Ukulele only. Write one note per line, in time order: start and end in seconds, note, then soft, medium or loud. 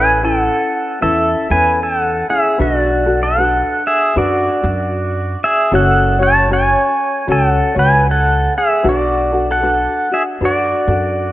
0.00 0.22 C#4 soft
0.00 0.23 E4 soft
0.00 0.23 A4 medium
0.23 1.01 C#4 medium
0.23 1.01 E4 medium
0.23 1.02 A4 medium
0.23 1.01 B4 medium
1.01 1.50 C#4 medium
1.01 1.49 E4 medium
1.01 1.49 A4 medium
1.01 1.49 B4 medium
1.50 2.29 C#4 soft
1.50 2.28 E4 soft
1.50 2.58 A4 soft
2.29 2.58 C#4 soft
2.29 2.59 E4 soft
2.58 3.06 D4 medium
2.58 3.06 F#4 medium
2.58 3.05 A4 medium
2.58 3.06 B4 medium
3.06 3.38 D4 soft
3.06 3.38 F#4 medium
3.06 3.37 A4 medium
3.38 4.15 D4 medium
3.38 4.16 F#4 medium
3.38 4.15 B4 medium
4.16 4.63 D4 medium
4.16 4.62 F#4 medium
4.16 4.64 A4 medium
4.16 4.63 B4 medium
4.63 5.72 D4 soft
4.63 5.72 F#4 soft
5.72 6.20 C#4 medium
5.72 6.19 F#4 medium
5.72 6.19 A4 medium
5.72 6.18 C#5 medium
6.19 6.49 C#4 soft
6.19 6.50 F#4 medium
6.19 6.50 C#5 medium
6.49 7.27 C#4 medium
6.49 7.28 F#4 medium
6.49 7.27 A4 medium
6.49 7.28 C#5 medium
7.27 7.76 C#4 medium
7.27 7.74 F#4 medium
7.27 7.75 A4 medium
7.27 7.73 C#5 medium
7.75 8.83 C#4 soft
7.75 8.84 F#4 soft
7.75 8.83 C#5 medium
8.83 9.32 D4 medium
8.83 9.32 F#4 medium
8.83 9.31 A4 medium
8.83 9.31 B4 medium
9.32 9.62 D4 soft
9.32 9.62 F#4 medium
9.32 9.62 A4 medium
9.63 10.10 D4 medium
9.63 10.10 F#4 medium
9.63 10.11 A4 medium
9.63 10.10 B4 medium
10.11 10.40 D4 soft
10.11 10.41 F#4 soft
10.41 10.88 D4 medium
10.41 10.89 F#4 medium
10.41 10.87 A4 medium
10.41 10.88 B4 medium
10.88 11.32 D4 soft
10.88 11.32 F#4 soft
10.88 11.32 A4 soft